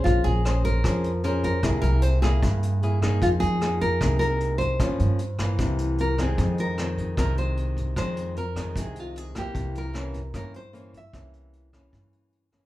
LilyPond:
<<
  \new Staff \with { instrumentName = "Nylon-string guitar" } { \time 4/4 \key f \minor \tempo 4 = 152 f'8 aes'4 bes'4. bes'8 bes'8~ | bes'8 bes'8 c''8 aes'2 r8 | f'8 aes'4 bes'4 bes'4 c''8~ | c''2. bes'8 aes'8~ |
aes'8 bes'4. bes'8 c''4. | c''4 bes'4 aes'8 f'8 aes'8 g'8~ | g'8 bes'4. bes'8 c''4 e''8~ | e''2.~ e''8 r8 | }
  \new Staff \with { instrumentName = "Nylon-string guitar" } { \time 4/4 \key f \minor << { <des' aes' c''>4 <des' aes' c''>4 <des' aes' c''>8 r8 <des' aes' c''>4 | <bes e' aes'>4. <bes e' aes'>4. <bes e' aes'>8 <bes ees' aes'>8~ | <bes ees' aes'>4 <bes ees' aes'>4 <bes ees' aes'>2 | <f bes des'>4 r8 <e bes>2 <ees aes c'>8~ |
<ees aes c'>4 <ees aes c'>4 <ees aes c'>2 | <ees aes c'>4 r8 <ees aes c'>2 <e bes>8~ | <e bes>4 <e bes des'>8 r8 <e bes des'>8 r8 <e bes des'>8 r8 | <e bes des'>4. <e bes des'>2 <e bes des'>8 | } \\ { bes2 f2 | c2 g,2 | f2 c2 | g,2 c2 |
f,2 c2 | f,2 c2 | c2 g,2 | c2 g,2 | } >> }
  \new Staff \with { instrumentName = "Upright bass" } { \clef bass \time 4/4 \key f \minor bes,,8 bes,,4. f,2 | c,8 c,4. g,2 | f,8 f,4. c,2 | g,8 g,4. c,2 |
f,2 c,2 | f,2 c,2 | c,2 g,2 | c,2 g,2 | }
  \new DrumStaff \with { instrumentName = "Drums" } \drummode { \time 4/4 <hh bd>8 hh8 <hh ss>8 <hh bd>8 <hh bd ss>8 hh8 hh8 <hh bd>8 | <hh bd ss>8 hh8 hh8 <hh bd ss>8 <hh bd>8 hh8 hh8 <hh bd ss>8 | <hh bd>8 hh8 <hh ss>8 <hh bd>8 <hh bd ss>8 hh8 hh8 <hh bd>8 | <hh bd ss>8 hh8 hh8 <hh bd ss>8 <hh bd>8 hh8 hh8 <hh bd ss>8 |
<hh bd>8 hh8 <hh ss>8 <hh bd>8 <hh bd ss>8 hh8 hh8 <hh bd>8 | <hh bd ss>8 hh8 hh8 <hh bd ss>8 <hh bd>8 hh8 hh8 <hh bd ss>8 | <hh bd>8 hh8 <hh ss>8 <hh bd>8 <hh bd ss>8 hh8 hh8 <hh bd>8 | <hh bd ss>8 hh8 hh8 <hh bd ss>8 <hh bd>8 hh8 hh8 <hh bd ss>8 | }
>>